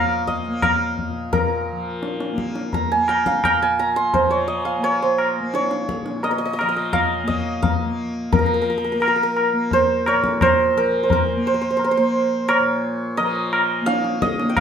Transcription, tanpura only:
Already playing: A#2 F3 A#3
0.48 A#3
1.09 A#2
1.72 F3
2.33 A#3
2.94 A#3
3.56 A#2
4.17 F3
4.78 A#3
5.40 A#3
6.01 A#2
6.62 F3
7.23 A#3
7.86 A#3
8.33 F3
8.93 A#3
9.53 A#3
10.14 A#2
10.75 F3
11.36 A#3
11.98 A#3
12.59 A#2
13.19 F3
13.81 A#3
14.42 A#3

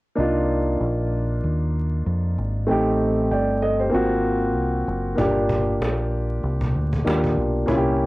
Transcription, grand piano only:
0.15 A#3 D4 D#4
0.20 F4
2.67 A3 C4 D#4
2.71 G4
3.31 D5 G5
3.62 A4 D#5
3.79 G4 C5
3.89 A#3 C4 F4
3.95 F#4
5.15 A#3 D4 F4
5.20 G4
7.04 A#3 D4 F4 G4
7.66 A#3 C#4 E4
7.70 F4
7.77 G4

